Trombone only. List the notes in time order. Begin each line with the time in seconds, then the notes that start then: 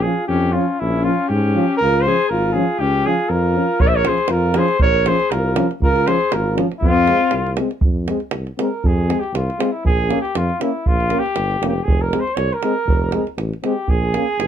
0.05 F3
0.55 F3
1.05 F3
1.55 F3
2.06 F3
2.56 F3
3.06 F3
3.56 F3
4.07 F3
4.57 F3
5.07 F3
5.57 F3
6.07 F3
6.57 F3
7.08 G#3
7.58 G#3
8.09 G#3
8.59 G#3
9.10 G#3
9.59 G#3
10.08 A#3
10.61 A#3
11.11 A#3
11.63 A#3
12.12 G#3
12.63 G#3
13.14 G#3
13.65 G#3
14.16 A#3